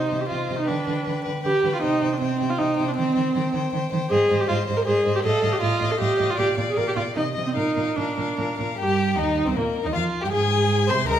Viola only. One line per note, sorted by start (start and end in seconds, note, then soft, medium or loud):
0.00 0.22 D#4 soft
0.21 0.28 G4 soft
0.29 0.58 F4 soft
0.58 0.69 D#4 soft
0.68 1.25 D4 soft
1.44 1.71 G4 medium
1.74 1.82 F4 medium
1.83 2.15 D#4 medium
2.13 2.20 D4 medium
2.20 2.51 C4 medium
2.49 2.60 F4 medium
2.58 2.87 D#4 medium
2.88 2.95 D4 medium
2.96 3.52 C4 medium
4.10 4.42 G#4 medium
4.40 4.48 G4 medium
4.48 4.56 F4 medium
4.77 4.81 A#4 medium
4.85 5.14 G#4 medium
5.15 5.19 G4 medium
5.23 5.54 A4 medium
5.52 5.61 G4 medium
5.61 5.93 F4 medium
5.91 6.00 A4 medium
6.00 6.32 G4 medium
6.30 6.38 F4 medium
6.39 6.47 G4 medium
6.70 6.78 G#4 medium
6.77 6.87 A#4 medium
6.88 6.92 G4 medium
6.96 7.04 F4 medium
7.16 7.24 D#4 medium
7.47 7.55 C4 medium
7.56 7.97 D#4 medium
7.96 8.58 D4 soft
8.79 9.16 G4 medium
9.18 9.49 D#4 medium
9.47 9.57 C4 soft
9.57 9.65 A#3 soft
9.86 9.89 D#4 medium
9.96 10.25 F4 medium
10.23 10.32 G4 medium
10.32 10.91 G#4 medium
10.89 11.08 C5 medium
11.09 11.19 G#3 soft